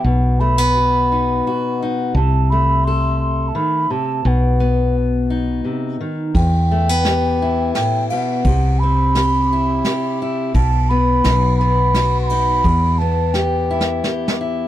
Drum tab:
RD |------------------|------------------|------------------|x-----x-----x--x--|
SD |------------------|------------------|------------------|------o-----o-----|
BD |------------------|------------------|------------------|o-----------------|

RD |x-----x-----x-----|x-----x-----x--x--|x-----------------|
SD |------o-----o-----|------o-----o-----|------o---o-o-o---|
BD |o-----------------|o-----------------|o-----------------|